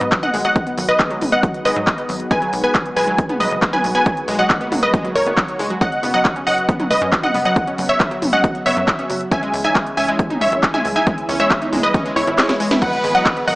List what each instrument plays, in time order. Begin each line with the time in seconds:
Already playing: analog synth pad D#3 G#3 B3 F#4, synth pluck B4 D#5, supersaw synth D#5, sub drop
0.01 analog synth bass G#2, synth pluck B3, closed hi-hat
0.12 synth pluck F#3, kick, clap, closed hi-hat
0.23 synth pluck D#5 F#5, supersaw synth F#5, closed hi-hat, mid tom
0.34 analog synth bass G#1, synth pluck G#3, open hi-hat
0.45 synth pluck F#3 D#5 F#5, supersaw synth F#5, closed hi-hat
0.56 kick, closed hi-hat
0.67 synth pluck B3, closed hi-hat
0.78 analog synth bass G#1, synth pluck F#3, open hi-hat
0.89 synth pluck B4 D#5, supersaw synth D#5
0.99 synth pluck G#3, kick, clap, closed hi-hat
1.10 synth pluck F#3, closed hi-hat
1.21 analog synth bass G#1, open hi-hat, mid tom
1.32 synth pluck B3 D#5 F#5, supersaw synth F#5
1.43 synth pluck F#3, kick, closed hi-hat
1.54 closed hi-hat
1.65 analog synth bass G#1, synth pluck G#3 B4 D#5, supersaw synth D#5, open hi-hat
1.76 analog synth bass G#2, synth pluck F#3, closed hi-hat
1.87 kick, clap, closed hi-hat
1.98 synth pluck B3, closed hi-hat
2.09 analog synth bass G#1, synth pluck F#3, open hi-hat
2.20 closed hi-hat
2.31 synth pluck G#3 B4 G#5, supersaw synth G#5, kick, closed hi-hat
2.42 synth pluck F#3, closed hi-hat
2.53 analog synth bass B1, open hi-hat
2.64 synth pluck B3 B4 G#5, supersaw synth G#5, closed hi-hat
2.75 synth pluck F#3, kick, clap, closed hi-hat
2.86 closed hi-hat
2.96 analog synth bass B1, synth pluck G#3 B4 G#5, supersaw synth G#5, open hi-hat
3.07 synth pluck F#3, closed hi-hat
3.18 kick, closed hi-hat
3.29 synth pluck B3, closed hi-hat, mid tom
3.40 analog synth bass B1, synth pluck F#3 B4 D#5, supersaw synth D#5, open hi-hat
3.51 analog synth bass F#1, closed hi-hat
3.62 synth pluck G#3, kick, clap, closed hi-hat
3.73 synth pluck F#3 B4 G#5, supersaw synth G#5, closed hi-hat, mid tom
3.84 analog synth bass B1, open hi-hat
3.95 synth pluck B3 B4 G#5, supersaw synth G#5, closed hi-hat
4.06 synth pluck F#3, analog synth pad A#3, kick, closed hi-hat
4.17 closed hi-hat
4.28 analog synth bass B1, synth pluck G#3, open hi-hat
4.39 synth pluck F#3 D#5 F#5, supersaw synth F#5, closed hi-hat
4.50 kick, clap, closed hi-hat
4.61 synth pluck B3, closed hi-hat
4.72 analog synth bass B1, synth pluck F#3, open hi-hat, mid tom
4.83 synth pluck B4 D#5, supersaw synth D#5
4.94 synth pluck G#3, kick, closed hi-hat
5.05 synth pluck F#3, closed hi-hat
5.15 analog synth bass B1, synth pluck A#4 C#5, supersaw synth C#5, open hi-hat
5.26 analog synth bass F#1, synth pluck B3, closed hi-hat
5.37 synth pluck F#3, kick, clap, closed hi-hat
5.48 closed hi-hat
5.59 analog synth bass F#1, synth pluck G#3, open hi-hat
5.70 synth pluck F#3, closed hi-hat
5.81 analog synth pad C#3 F#3 B3, synth pluck F#3 D#5 F#5, supersaw synth F#5, kick, closed hi-hat
5.92 closed hi-hat
6.03 analog synth bass F#1, synth pluck B3, open hi-hat
6.14 synth pluck F#3 D#5 F#5, supersaw synth F#5, closed hi-hat
6.25 kick, clap, closed hi-hat
6.36 synth pluck C#4, closed hi-hat
6.47 analog synth bass F#1, synth pluck F#3 D#5 F#5, supersaw synth F#5, open hi-hat
6.58 closed hi-hat
6.69 synth pluck B3, kick, closed hi-hat
6.80 synth pluck F#3, closed hi-hat, mid tom
6.91 analog synth bass F#1, synth pluck B4 D#5, supersaw synth D#5, open hi-hat
7.01 analog synth bass F#2, synth pluck C#4, closed hi-hat
7.12 synth pluck F#3, kick, clap, closed hi-hat
7.23 synth pluck D#5 F#5, supersaw synth F#5, closed hi-hat, mid tom
7.34 analog synth bass F#1, synth pluck B3, open hi-hat
7.45 synth pluck F#3 D#5 F#5, supersaw synth F#5, closed hi-hat
7.56 kick, closed hi-hat
7.67 synth pluck C#4, closed hi-hat
7.78 analog synth bass F#1, synth pluck F#3, open hi-hat
7.89 synth pluck C#5 E5, supersaw synth E5
8.00 synth pluck B3, kick, clap, closed hi-hat
8.11 synth pluck F#3, closed hi-hat
8.22 analog synth bass F#1, open hi-hat, mid tom
8.33 synth pluck C#4 D#5 F#5, supersaw synth F#5, closed hi-hat
8.44 synth pluck F#3, kick, closed hi-hat
8.55 closed hi-hat
8.66 analog synth bass F#1, synth pluck B3 C#5 E5, supersaw synth E5, open hi-hat
8.77 analog synth bass F#2, synth pluck F#3, closed hi-hat
8.88 kick, clap, closed hi-hat
8.99 synth pluck C#4, closed hi-hat
9.10 analog synth bass F#1, synth pluck F#3, open hi-hat
9.21 closed hi-hat
9.31 analog synth pad E3 G#3 C#4 E4, synth pluck C#4 E5 G#5, supersaw synth G#5, kick, closed hi-hat
9.43 synth pluck G#3, closed hi-hat
9.53 analog synth bass C#2, open hi-hat
9.64 synth pluck D#4 E5 G#5, supersaw synth G#5, closed hi-hat
9.75 synth pluck G#3, kick, clap, closed hi-hat
9.87 closed hi-hat
9.97 analog synth bass C#2, synth pluck C#4 E5 G#5, supersaw synth G#5, open hi-hat
10.08 synth pluck G#3, closed hi-hat
10.19 kick, closed hi-hat
10.30 synth pluck D#4, closed hi-hat, mid tom
10.41 analog synth bass C#2, synth pluck G#3 C#5 E5, supersaw synth E5, open hi-hat
10.52 analog synth bass G#1, closed hi-hat
10.63 synth pluck C#4, kick, clap, closed hi-hat
10.74 synth pluck G#3 E5 G#5, supersaw synth G#5, closed hi-hat, mid tom
10.85 analog synth bass C#2, open hi-hat
10.96 synth pluck D#4 E5 G#5, supersaw synth G#5
11.07 synth pluck G#3, analog synth pad B3, kick, closed hi-hat
11.18 closed hi-hat
11.29 analog synth bass C#2, synth pluck C#4, open hi-hat
11.40 synth pluck G#3 C#5 E5, supersaw synth E5, closed hi-hat
11.51 kick, clap, closed hi-hat
11.62 synth pluck D#4, closed hi-hat
11.72 analog synth bass C#2, synth pluck G#3, open hi-hat, mid tom
11.83 synth pluck B4 D#5, supersaw synth D#5, closed hi-hat
11.94 synth pluck C#4, kick, closed hi-hat
12.05 synth pluck G#3, closed hi-hat
12.16 analog synth bass C#2, synth pluck E4 C#5, supersaw synth C#5, open hi-hat
12.27 analog synth bass G#1, synth pluck E4, clap, closed hi-hat
12.38 synth pluck G#3, snare, clap, closed hi-hat
12.49 synth pluck E4, snare, closed hi-hat
12.60 synth pluck G#3, open hi-hat
12.71 synth pluck E4, snare, closed hi-hat, mid tom
12.82 synth pluck F#3 D#5 F#5, violin section B3 B4, analog synth pad F#4, supersaw synth F#5, kick, closed hi-hat, crash, ride
12.93 closed hi-hat
13.04 analog synth bass G#1, synth pluck G#3, open hi-hat
13.15 synth pluck F#3 D#5 F#5, supersaw synth F#5, closed hi-hat
13.26 kick, clap, closed hi-hat, ride
13.37 synth pluck B3, closed hi-hat
13.48 analog synth bass G#1, synth pluck F#3 D#5 F#5, violin section A#3 A#4, supersaw synth F#5, open hi-hat